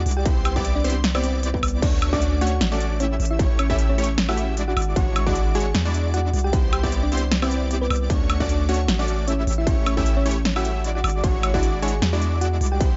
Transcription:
Already playing: G#3 D4 E4 F#4 D5
0.06 C2, open hi-hat
0.11 closed hi-hat
0.17 G4 G5
0.26 B3 C4 E4 G4 C5, kick, closed hi-hat
0.45 G4 G5, closed hi-hat, high woodblock
0.56 B3 C4 E4 G4 D5, kick
0.65 closed hi-hat
0.75 D4 D5
0.84 B3 C4 E4 G4 C5, closed hi-hat
0.90 closed hi-hat
1.04 snare, closed hi-hat
1.15 B3 C4 E4 G4 C5 D5, high woodblock
1.24 closed hi-hat
1.43 B3 C4 E4 G4 D5, closed hi-hat
1.54 B3 B4, kick
1.63 C2, open hi-hat, high woodblock
1.68 closed hi-hat
1.82 D2 A3 C#4 D4 F#4 C#5 D5, kick, closed hi-hat, crash
2.02 closed hi-hat, high woodblock
2.13 A3 C#4 D4 F#4 D5, kick
2.22 closed hi-hat
2.41 A3 C#4 D4 F#4 C#5 F#5, closed hi-hat
2.47 closed hi-hat
2.61 A1, snare, closed hi-hat
2.72 A3 C#4 D4 F#4 D5
2.81 closed hi-hat
3.00 A3 C#4 E4 G4 C#5 E5, closed hi-hat
3.20 A1, open hi-hat
3.25 closed hi-hat
3.31 E4 E5
3.39 A3 C#4 E4 G4 C#5, kick, closed hi-hat
3.59 C#4 C#5, closed hi-hat, high woodblock
3.70 A3 C#4 E4 G4 E5, kick
3.79 closed hi-hat
3.89 C#4 C#5
3.98 A3 C#4 E4 G4 C#5, closed hi-hat
4.04 closed hi-hat
4.18 snare, closed hi-hat
4.29 A3 C#4 E4 F#4 G4 E5 F#5, high woodblock
4.38 closed hi-hat
4.57 G#3 D4 E4 F#4 D5, closed hi-hat
4.68 F#4 F#5
4.77 G#1, open hi-hat, high woodblock
4.82 closed hi-hat
4.96 G#1 G#3 D4 E4 F#4 C#5 F#5, kick, closed hi-hat
5.16 closed hi-hat, high woodblock
5.27 G#3 D4 E4 F#4 D5 F#5, kick
5.35 closed hi-hat
5.55 G#3 D4 E4 F#4 G#4 C#5 G#5, closed hi-hat
5.60 closed hi-hat
5.75 E2, snare, closed hi-hat
5.85 G#3 D4 E4 F#4 D5
5.94 closed hi-hat
6.14 G#3 D4 E4 F#4 D5 F#5, closed hi-hat
6.33 C2, open hi-hat
6.39 closed hi-hat
6.44 G4 G5
6.53 B3 C4 E4 G4 C5, kick, closed hi-hat
6.73 G4 G5, closed hi-hat, high woodblock
6.83 B3 C4 E4 G4 D5, kick
6.92 closed hi-hat
7.03 D4 D5
7.12 B3 C4 E4 G4 C5, closed hi-hat
7.17 closed hi-hat
7.32 snare, closed hi-hat
7.42 B3 C4 E4 G4 C5 D5, high woodblock
7.51 closed hi-hat
7.71 B3 C4 E4 G4 D5, closed hi-hat
7.81 B3 B4
7.90 C2, open hi-hat, high woodblock
7.96 closed hi-hat
8.10 D2 A3 C#4 D4 F#4 C#5 D5, kick, closed hi-hat
8.30 closed hi-hat, high woodblock
8.40 A3 C#4 D4 F#4 D5, kick
8.49 closed hi-hat
8.69 A3 C#4 D4 F#4 C#5 F#5, closed hi-hat
8.74 closed hi-hat
8.88 A1, snare, closed hi-hat
8.99 A3 C#4 D4 F#4 D5
9.08 closed hi-hat
9.28 A3 C#4 E4 G4 C#5 E5, closed hi-hat
9.47 A1, open hi-hat
9.53 closed hi-hat
9.58 E4 E5
9.67 A3 C#4 E4 G4 C#5, kick, closed hi-hat
9.86 C#4 C#5, closed hi-hat, high woodblock
9.97 A3 C#4 E4 G4 E5, kick
10.06 closed hi-hat
10.17 C#4 C#5
10.26 A3 C#4 E4 G4 C#5, closed hi-hat
10.31 closed hi-hat
10.45 snare, closed hi-hat
10.56 A3 C#4 E4 F#4 G4 E5 F#5, high woodblock
10.65 closed hi-hat
10.84 G#3 D4 E4 F#4 D5, closed hi-hat
10.95 F#4 F#5
11.04 G#1, open hi-hat, high woodblock
11.09 closed hi-hat
11.24 G#1 G#3 D4 E4 F#4 C#5 F#5, kick, closed hi-hat
11.43 closed hi-hat, high woodblock
11.54 G#3 D4 E4 F#4 D5 F#5, kick
11.63 closed hi-hat
11.82 G#3 D4 E4 F#4 G#4 C#5 G#5, closed hi-hat
11.88 closed hi-hat
12.02 E2, snare, closed hi-hat
12.13 G#3 D4 E4 F#4 D5
12.22 closed hi-hat
12.41 G#3 D4 E4 F#4 D5 F#5, closed hi-hat
12.61 C2, open hi-hat
12.66 closed hi-hat
12.72 G4 G5
12.81 B3 C4 E4 G4 C5, kick, closed hi-hat

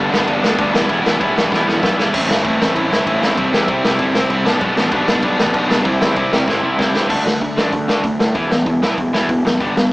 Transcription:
Already playing: G2 D3 G3 B3
0.11 G1 G2 D3 G3 B3 D4, snare
0.20 kick
0.27 G1 G2 D3 G3 B3 D4, kick, crash
0.43 D2 G2 D3 G3 B3 D4, snare
0.57 D2 G2 D3 G3 B3 D4, kick, crash
0.73 E1 E3 G3 B3 E4, snare
0.82 kick
0.89 E1 E3 G3 B3 E4, kick, crash
1.04 E1 E3 G3 B3 E4, snare
1.20 E1 E3 G3 B3 E4, kick, crash
1.35 E1 E3 G3 B3 E4, snare
1.44 kick
1.51 E1 E3 G3 B3 E4, kick, snare
1.66 E1 E3 G3 B3 E4, snare
1.81 B1 E3 G3 B3 E4, kick, snare
1.97 E1 E3 G3 B3 E4, snare
2.12 A1 A2 E3 A3 C4 E4, kick, crash
2.28 G1 A2 E3 A3 C4 E4, snare
2.43 A1 A2 E3 A3 C4 E4, kick, crash
2.59 A1 A2 E3 A3 C4 E4, snare
2.68 kick
2.74 A1 A2 E3 A3 C4 E4, kick, crash
2.90 G1 A2 E3 A3 C4 E4, snare
2.99 kick
3.05 A1 A2 E3 A3 C4 E4, kick, crash
3.21 E1 A2 E3 A3 C4 E4, snare
3.37 C2 C3 G3 C4 E4, kick, crash
3.52 E2 C3 G3 C4 E4, snare
3.68 C2 C3 G3 C4 E4, kick, crash
3.84 C2 C3 G3 C4 E4, snare
3.91 kick
3.99 G1 C3 G3 C4 E4, kick, crash
4.15 C2 C3 G3 C4 E4, snare
4.23 kick
4.29 C2 C3 G3 C4 E4, kick, crash
4.45 B1 B2 G3 B3 D4, snare
4.61 B1 B2 G3 B3 D4, kick, crash
4.76 A1 B2 G3 B3 D4, snare
4.92 B1 B2 G3 B3 D4, kick, crash
5.07 B1 B2 G3 B3 D4, snare
5.15 kick
5.22 B1 B2 G3 B3 D4, kick, crash
5.39 A1 B2 G3 B3 D4, snare
5.47 kick
5.54 B1 B2 G3 B3 D4, kick, crash
5.69 F#1 B2 G3 B3 D4, snare
5.85 C2 C3 G3 C4 E4, kick, crash
6.00 E2 C3 G3 C4 E4, snare
6.16 C2 C3 G3 C4 E4, kick, crash
6.32 C2 C3 G3 C4 E4, snare
6.40 kick
6.48 G1 C3 G3 C4 E4, kick, snare
6.63 C2 C3 G3 C4 E4
6.78 C2 C3 G3 C4 E4, kick, snare
6.94 G2 C3 G3 C4 E4, snare
7.09 D2 D3 A3 D4, kick, crash
7.25 D2 D3 A3, snare
7.41 D2 D3 A3, kick, open hi-hat
7.56 A1 D3 A3 D4, snare
7.72 D2 D3 A3, kick, open hi-hat
7.88 D3 A3 D4, snare
8.03 D2 D3 A3, kick, open hi-hat
8.19 A2 D3 A3, snare
8.34 E1 E3 B3 E4, kick, open hi-hat
8.50 E1 E3 B3, snare
8.66 E1 E3 B3, kick, open hi-hat
8.82 B1 E3 B3 E4, snare
8.97 E1 E3 B3, kick, open hi-hat
9.13 E3 B3 E4, snare
9.29 E1 E3 B3, kick, open hi-hat
9.45 B1 E3 B3, snare
9.60 G1 G3 B3 D4, kick, open hi-hat
9.77 G1 G3 B3, snare

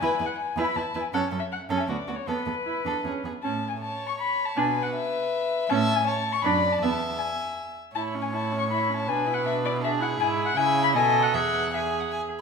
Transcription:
0.01 E2 E4 B4 G#5
0.20 E2 E4 B4
0.26 F#5
0.38 G#5
0.56 E2 E4 B4
0.64 B5
0.76 E2 E4 B4 A5
0.95 E2 E4 B4
1.01 G#5
1.13 F#2 C#4 A4 F#5
1.32 F#2 C#4 A4
1.39 E5
1.52 F#5
1.69 F#2 C#4 A4
1.80 E5
1.88 D2 B3 F#4 D5
2.08 D2 B3 F#4
2.16 C#5
2.27 E2 B3 A4 B4
2.46 E2 B3 A4
2.66 E4
2.85 E2 D4 A4
3.05 E2 C#4 G#4
3.24 E2 B3 G#4
3.43 A2 C#4 A5
3.69 G#5
3.82 C#5 A5
4.07 C#6
4.20 B5
4.45 A5
4.56 B2 D4 B4 G#5
4.83 F#5
4.95 E5
5.69 A2 C#4 E5 A5
5.96 G#5
6.07 C#5 A5
6.33 C#6
6.44 F#2 D4 D5 B5
6.72 A5
6.81 E2 B3 E5 A5
7.18 G#5
7.95 A2 E4 C#5 A5
8.15 C#4
8.22 G#5
8.33 E4 A5
8.53 C#4
8.59 C#6
8.70 E4 B5
8.90 C#4
8.96 A5
9.08 B2 D4 B4 G#5
9.28 E4
9.34 F#5
9.46 D4 E5
9.64 E4 D5
9.82 D4 G#4 E5
10.01 E4 F#5
10.20 G#2 E4 G#5
10.45 F#5
10.57 C#3 E4 E5 G#5
10.83 B5
10.94 B2 A4 D#5 G#5
11.22 F#5
11.33 E2 G#4 E5 F#5
11.73 G#4 E5 G#5
12.00 F#5
12.13 G#5

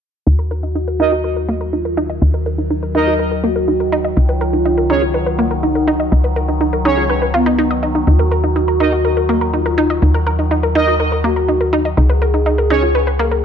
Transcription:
0.26 D#2 D#3 F#3 D#4 F#4
0.39 A#4
0.51 A#4
0.63 D#4
0.75 D#4
0.88 A#4
1.00 D#4 A#4 D#5
1.12 F#4
1.24 A#4
1.36 A#4
1.49 A#3
1.61 A#4
1.73 D#4 F4
1.85 A#4
1.97 D#4
2.10 D#5
2.22 D#2 D#4
2.34 A#4
2.46 A#4
2.58 D#4
2.70 D#4
2.83 A#4
2.95 D#4 A#4 D#5
3.07 F#4
3.19 A#4
3.31 A#4
3.44 A#3 F#4
3.56 A#4
3.68 D#4
3.80 A#4
3.92 D#4
4.04 D#5
4.17 C#2 D#4 F4
4.29 B4
4.41 A#4
4.53 D#4
4.65 D#4
4.78 A#4
4.90 C#4 D#4 G#4 C#5
5.02 F4
5.14 B4
5.26 B4
5.39 A#3
5.51 A#4
5.63 D#4
5.75 A#4
5.87 D#4
6.00 D#5
6.12 C#2 D#4
6.24 B4
6.36 A#4
6.48 D#4
6.61 D#4
6.73 A#4
6.85 C#4 D#4 G#4 C#5
6.97 F4
7.09 B4
7.22 B4
7.34 B3 F4
7.46 D#4
7.58 D#4
7.71 D#5
7.83 D#4
7.95 D#4
8.07 D#2 D#4 F#4
8.19 A#4
8.31 A#4
8.44 D#4
8.56 D#4
8.68 A#4
8.80 D#4 A#4 D#5
8.92 F#4
9.05 A#4
9.17 A#4
9.29 A#3
9.41 A#4
9.53 D#4 F4
9.66 A#4
9.78 D#4
9.90 D#5
10.02 D#2 D#4
10.14 A#4
10.27 A#4
10.39 D#4
10.51 D#4
10.63 A#4
10.75 D#4 A#4 D#5
10.88 F#4
11.00 A#4
11.12 A#4
11.24 A#3 F#4
11.36 A#4
11.48 D#4
11.61 A#4
11.73 D#4
11.85 D#5
11.97 C#2 D#4 G#4
12.09 B4
12.22 A#4
12.34 D#4
12.46 D#4
12.58 A#4
12.70 C#4 D#4 G#4 C#5
12.83 F4
12.95 B4
13.07 B4
13.19 A#3
13.31 A#4

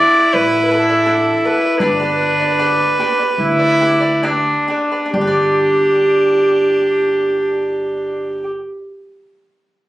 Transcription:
Already playing: E4 D5
0.00 D4 A4 D5 F#5
0.16 A4 D5 F#5
0.34 A1 B4
0.53 A4 D5 F#5
0.65 B4
0.71 D4 A4 D5 F#5
0.75 A4
0.89 A4 D5 F#5
1.06 D4 A4 D5 F#5
1.45 D4 A4 B4 D5 F#5
1.62 A4 D5 F#5
1.79 G1 D4 G4 B4 D5
1.99 G4 B4 D5
2.39 G4 B4 D5
2.59 D4 G4 B4 D5
2.99 D4 G4 B4 D5
3.19 G4 B4 D5
3.38 D2 E4
3.59 G4 B4 D5
3.80 D4 G4 B4 D5
4.00 G4 B4 D5
4.23 D4 G4 B4 D5
4.68 D4 G4 B4 D5
4.92 G4 B4 D5
5.06 D4
5.13 G1 D4 G4
5.21 B4
5.27 D5

